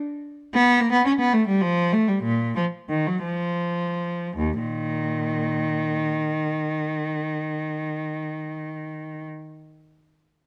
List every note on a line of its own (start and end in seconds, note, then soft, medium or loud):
0.54 0.79 B3 loud
0.80 0.94 A#3 loud
0.92 1.07 B3 medium
1.06 1.12 C#4 medium
1.20 1.34 B3 medium
1.33 1.48 A3 medium
1.48 1.63 G3 medium
1.61 1.92 F3 medium
1.92 2.09 A3 medium
2.08 2.25 G3 medium
2.23 2.56 A#2 medium
2.56 2.64 F3 medium
2.89 3.06 D#3 medium
3.07 3.24 F#3 medium
3.23 4.35 F3 medium
4.37 4.61 D#2 medium
4.60 6.08 A#2 medium
4.60 9.25 D#3 medium